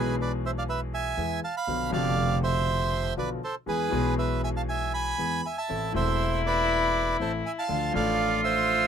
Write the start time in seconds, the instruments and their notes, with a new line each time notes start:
Already playing: upright bass B1, grand piano B1 B2 E3 G#3 B3 G#4, bandoneon G#4 B4
0.21 bandoneon B4 D5
0.46 bandoneon C5 E5
0.58 bandoneon D5 F5
0.69 bandoneon B4 E5
0.94 bandoneon E5 G#5
1.17 grand piano E2 E3 G#3 B3 G#4, upright bass E2
1.44 bandoneon F5 A5
1.57 bandoneon F5 B5
1.67 grand piano B1 B2 D3 F3 B3 F4, upright bass B1
1.90 grand piano F1 F2 B2 D3 F3, upright bass F1, bandoneon D5 F5
1.94 grand piano F4
2.44 bandoneon C5 E5
3.17 upright bass B1, grand piano B1 B2 D3 F3 B3 F4, bandoneon B4 D5
3.44 bandoneon A4 C5
3.66 grand piano E2 E3 G#3 B3 G#4, upright bass E2, bandoneon G#4 B4
3.89 grand piano B1 B2 E3 G#3 B3, upright bass B1
3.93 grand piano G#4
4.18 bandoneon B4 E5
4.44 bandoneon E5 G#5
4.57 bandoneon F5 A5
4.69 bandoneon E5 G#5
4.94 bandoneon G#5 B5
5.18 grand piano E2 E3 G#3 B3 G#4, upright bass E2
5.45 bandoneon E5 G#5
5.58 bandoneon E5 A5
5.69 grand piano A1 A2 E3 A3 C4 A4, upright bass A1, cello E4
5.92 grand piano E1 E2 E3 A3 C4, upright bass E1, bandoneon C5 E5
5.97 grand piano A4
6.46 bandoneon B4 D5
7.19 upright bass A1, grand piano A1 A2 E3 A3 C4 A4, bandoneon A4 C5
7.46 bandoneon E5 G#5
7.59 bandoneon F5 A5
7.68 grand piano D2 D3 F3 A3 D4 A4, upright bass D2, cello F4
7.91 grand piano A1 A2 F3 A3 D4, upright bass A1
7.96 grand piano A4, bandoneon D5 F5
8.44 bandoneon C5 E5